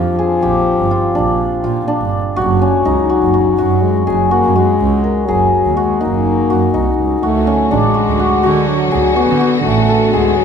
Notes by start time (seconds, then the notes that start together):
Already playing: F2 F3 C4 D4 F4 G4
0.19 G#4
0.43 A#1 G4
0.79 G1
0.91 F4
1.15 A#1 D4
1.64 A#2 F4
1.88 D4
2.01 G1
2.36 F#1 F#3 F#4
2.62 C#4
2.85 C#2 D#4
3.10 F#4
3.22 F#1
3.34 F#4
3.58 F#2 F#4
3.82 G#3
4.07 F#1 F#3 G#4
4.31 A#3 F#4
4.44 F#2
4.56 G#3 F#4
4.80 C#2
5.04 A#4
5.27 F#1 F#3 G#4
5.65 D#2
5.76 G#3 F#4
6.01 F#1 A#3 D#4
6.50 F#2 F#4
6.74 C2 D#4
6.98 C#2
7.20 D2 D3 F#3 A3 F#4
7.47 C#4
7.71 A1 G#3 D4
7.94 F#4
8.07 D2
8.19 F#4
8.43 D3 F#4
8.67 F#3
8.91 D2 G#4
9.16 B3 F#4
9.29 D3
9.40 F#4
9.63 A1 A3 B3
9.89 A4
10.12 D2 G#3 G#4
10.36 F#3